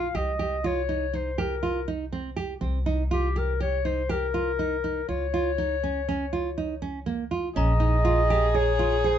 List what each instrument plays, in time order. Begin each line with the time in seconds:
Already playing: upright bass A#1, clarinet F5
0.15 upright bass C2, nylon-string guitar G4, clarinet D#5
0.39 nylon-string guitar G4
0.64 nylon-string guitar F4, clarinet C#5
0.89 nylon-string guitar D#4
1.13 nylon-string guitar D#4, clarinet C5
1.38 nylon-string guitar G4, clarinet A#4
1.63 nylon-string guitar F4
1.88 nylon-string guitar D#4
2.13 nylon-string guitar C4
2.37 nylon-string guitar G4
2.61 upright bass C2, nylon-string guitar C4
2.86 nylon-string guitar D#4
3.11 nylon-string guitar F4, clarinet G4
3.36 nylon-string guitar G4, clarinet A#4
3.60 nylon-string guitar G4, clarinet C#5
3.85 nylon-string guitar D#4, clarinet C5
4.09 nylon-string guitar G4, clarinet A#4
4.34 nylon-string guitar F4
4.59 nylon-string guitar D#4
4.84 nylon-string guitar D#4
5.09 upright bass C#2, nylon-string guitar F4, clarinet C#5
5.34 nylon-string guitar F4
5.58 nylon-string guitar D#4
5.84 nylon-string guitar C#4
6.09 nylon-string guitar C#4
6.33 nylon-string guitar F4
6.58 nylon-string guitar D#4
6.82 nylon-string guitar C#4
7.06 nylon-string guitar A#3
7.31 nylon-string guitar F4
7.55 upright bass A#1, nylon-string guitar C#4, viola G#4, clarinet D#5, glockenspiel A#5
7.80 nylon-string guitar D#4
8.05 nylon-string guitar F4
8.30 nylon-string guitar G4
8.55 nylon-string guitar G#4, clarinet C#5
8.79 nylon-string guitar F4
9.04 nylon-string guitar G#4, clarinet C5